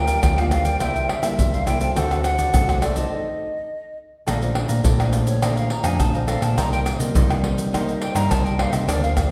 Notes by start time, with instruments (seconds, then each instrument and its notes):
Already playing: fingered electric bass D2, nylon-string guitar D3 G3 A#3 F4, flute G5
0.06 cavaquinho A#4 D5 F5, pandeiro, shaker, surdo
0.22 fingered electric bass D2, nylon-string guitar D3, pandeiro, tamborim, shaker, surdo
0.37 nylon-string guitar G3 A#3 F4, cavaquinho A#4 D5 F5, flute F5, pandeiro, tamborim, shaker
0.50 cavaquinho G4 A#4 D5 F5, flute F5, pandeiro, tamborim, shaker
0.64 cavaquinho A#4 D5 F5, flute G5, pandeiro, shaker, surdo
0.80 fingered electric bass C2, nylon-string guitar C3 G3 A#3 E4, cavaquinho E4 A#4 C5 E5, flute G5, pandeiro, tamborim, shaker, surdo
0.95 cavaquinho A#4 C5 E5, pandeiro, shaker
1.08 flute E5, muted cavaquinho stroke, pandeiro, tamborim, surdo
1.22 nylon-string guitar G3 A#3 E4, cavaquinho A#4 C5 E5, pandeiro, tamborim, shaker
1.38 fingered electric bass C2, nylon-string guitar G2, pandeiro, shaker, surdo
1.54 cavaquinho A#4 C5 E5, flute F5, pandeiro, shaker, surdo
1.66 fingered electric bass C2, nylon-string guitar G3 A#3 E4, cavaquinho E4 A#4 C5 E5, flute G5, pandeiro, tamborim, shaker
1.79 nylon-string guitar C4 F#4 A4, cavaquinho A#4 C5 E5, flute G5, pandeiro, shaker, surdo
1.96 fingered electric bass D2, nylon-string guitar D3, cavaquinho F#4 A4 C5 D5, flute F#5, pandeiro, tamborim, shaker, surdo
2.11 nylon-string guitar C4 F#4 A4, pandeiro, tamborim, shaker
2.24 flute F#5, muted cavaquinho stroke, pandeiro, tamborim, shaker
2.38 cavaquinho A4 C5 D5, pandeiro, shaker, surdo
2.54 fingered electric bass C2, nylon-string guitar A2 C4 F#4 A4, pandeiro, tamborim, shaker, surdo
2.68 cavaquinho A4 C5 D5, pandeiro, tamborim, shaker
2.82 cavaquinho F#4 A4 C5 D5, flute D5, pandeiro, tamborim, shaker
2.95 nylon-string guitar C4 D#4 A4, cavaquinho A4 C5 D5, flute D#5, pandeiro, shaker, surdo
4.26 fingered electric bass A#1, nylon-string guitar A#2 F3 A3 D4, cavaquinho A4 D5 F5 A#5, pandeiro, tamborim, shaker, surdo
4.42 nylon-string guitar F3 A3 D4, cavaquinho D5 F5 A#5, pandeiro, shaker
4.55 nylon-string guitar F3 A3 D4, muted cavaquinho stroke, pandeiro, tamborim
4.68 fingered electric bass A#2, cavaquinho D5 F5 A#5, pandeiro, shaker
4.84 nylon-string guitar F2, fingered electric bass A#2, cavaquinho A4 D5 F5 A#5, pandeiro, shaker, surdo
4.99 nylon-string guitar F3 A3 D4, cavaquinho D5 F5 A#5, pandeiro, tamborim, shaker
5.12 cavaquinho A4 D5 F5 A#5, pandeiro, shaker
5.27 flute C#5, pandeiro, shaker
5.42 nylon-string guitar A#2 F3 A3 D4, cavaquinho A4 D5 F5 A#5, flute D5, pandeiro, tamborim, shaker, surdo
5.56 cavaquinho D5 F5 A#5, flute F5, pandeiro, shaker
5.70 flute A#5, muted cavaquinho stroke, pandeiro
5.83 fingered electric bass F2, nylon-string guitar F3 A3 D4, cavaquinho D5 F5 A#5, flute G#5, pandeiro, tamborim, shaker
6.00 fingered electric bass A#1, nylon-string guitar F2, flute A5, pandeiro, tamborim, shaker, surdo
6.14 flute C5, cavaquinho D5 F5 A#5, pandeiro, shaker
6.27 nylon-string guitar F3 A3 D4, cavaquinho A4 D5 F5 A#5, flute F5, pandeiro, tamborim, shaker
6.41 fingered electric bass A#2, cavaquinho D5 F5 A#5, flute A5, pandeiro, tamborim, shaker
6.56 fingered electric bass C2, nylon-string guitar C3 G3 A#3 D#4, cavaquinho D#4 A#4 C5 D#5, flute A#5, pandeiro, tamborim, shaker, surdo
6.72 cavaquinho A#4 C5 D#5, flute G5, pandeiro, shaker
6.85 muted cavaquinho stroke, pandeiro, tamborim, shaker
6.98 fingered electric bass C3, nylon-string guitar G3 A#3 D#4, cavaquinho A#4 C5 D#5, pandeiro, shaker
7.14 nylon-string guitar G2, fingered electric bass C3, cavaquinho D#4 A#4 C5 D#5, pandeiro, shaker, surdo
7.29 cavaquinho A#4 C5 D#5, pandeiro, tamborim, shaker
7.43 nylon-string guitar G3 A#3 D#4, cavaquinho D#4 A#4 C5 D#5, pandeiro
7.58 pandeiro, shaker
7.73 nylon-string guitar C3 G3 A#3 D#4, cavaquinho D#4 A#4 C5 D#5, pandeiro, tamborim, shaker, surdo
7.87 cavaquinho A#4 C5 D#5, flute D#5, pandeiro, shaker
8.01 flute G5, muted cavaquinho stroke, pandeiro
8.15 fingered electric bass G2, nylon-string guitar G3 A#3 D#4, cavaquinho A#4 C5 D#5, flute A#5, pandeiro, tamborim, shaker
8.31 fingered electric bass C2, nylon-string guitar G2, flute A5, pandeiro, tamborim, shaker, surdo
8.45 cavaquinho A#4 C5 D#5, flute G5, pandeiro, shaker
8.58 nylon-string guitar G3 A#3 D#4, cavaquinho D#4 A#4 C5 D#5, flute F5, pandeiro, tamborim
8.72 fingered electric bass C3, cavaquinho A#4 C5 D#5, flute E5, pandeiro, tamborim, shaker
8.88 fingered electric bass D2, nylon-string guitar D3 F3 A#3 D4, cavaquinho D4 A#4 D5 F5, flute D5, pandeiro, tamborim, shaker, surdo
9.03 nylon-string guitar F3 A#3 D4, cavaquinho A#4 D5 F5, flute F5, pandeiro, shaker
9.17 nylon-string guitar F3 A#3 D4, muted cavaquinho stroke, pandeiro, tamborim, shaker, surdo